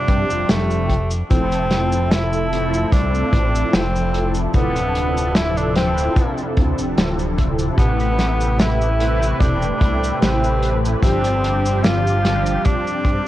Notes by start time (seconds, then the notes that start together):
Already playing: C3 F3 G3 C4 D4 G4
0.08 G2, kick, closed hi-hat
0.30 F1, cabasa
0.49 F1 A3, snare, closed hi-hat, cabasa
0.71 cabasa
0.90 kick, closed hi-hat
1.11 cabasa
1.29 F1 F3 A3 C4 E4 A4, kick, closed hi-hat, cabasa
1.52 closed hi-hat, cabasa
1.70 snare, closed hi-hat
1.92 cabasa
2.11 E4, snare, closed hi-hat, cabasa
2.33 cabasa
2.51 F3 A3 C4 E4 A4, closed hi-hat
2.74 cabasa
2.92 C2 D4, kick, closed hi-hat, cabasa
3.14 cabasa
3.33 A1, kick, closed hi-hat
3.55 cabasa
3.73 F1 C4, snare, closed hi-hat, cabasa
3.95 cabasa
4.14 closed hi-hat
4.34 cabasa
4.53 D1 C3 F3 B3 D4 E4 A4, kick, closed hi-hat, cabasa
4.76 closed hi-hat, cabasa
4.95 closed hi-hat
5.17 cabasa
5.35 E4, snare, closed hi-hat, cabasa
5.57 D4, cabasa
5.75 F3 C4 D4 E4 A4, snare, closed hi-hat
5.98 cabasa
6.16 kick, closed hi-hat, cabasa
6.38 cabasa
6.57 D2, kick, closed hi-hat
6.78 D1, cabasa
6.97 D1, snare, closed hi-hat, cabasa
7.19 cabasa
7.39 kick, closed hi-hat
7.59 cabasa
7.77 A1 C3 A3 B3 E4 G4 A4 B4 G5 A5 B5, kick, closed hi-hat, cabasa
8.00 closed hi-hat, cabasa
8.19 snare, closed hi-hat
8.41 cabasa
8.59 E4, snare, closed hi-hat, cabasa
8.81 cabasa
8.99 A3 C4 E4 G4 B4, closed hi-hat
9.23 cabasa
9.40 E1 D4, kick, closed hi-hat, cabasa
9.62 cabasa
9.81 C2, kick, closed hi-hat
10.04 cabasa
10.21 A1 C4, snare, closed hi-hat, cabasa
10.44 cabasa
10.63 closed hi-hat
10.85 cabasa
11.02 G1 F3 G3 C4 D4 G4 D6, kick, closed hi-hat, cabasa
11.24 closed hi-hat, cabasa
11.45 closed hi-hat
11.66 cabasa
11.84 F4, snare, closed hi-hat, cabasa
12.07 cabasa
12.23 F3 G3 C4 D4 G4, snare, closed hi-hat
12.46 cabasa
12.65 D4, kick, closed hi-hat, cabasa
12.87 cabasa
13.05 G2, kick, closed hi-hat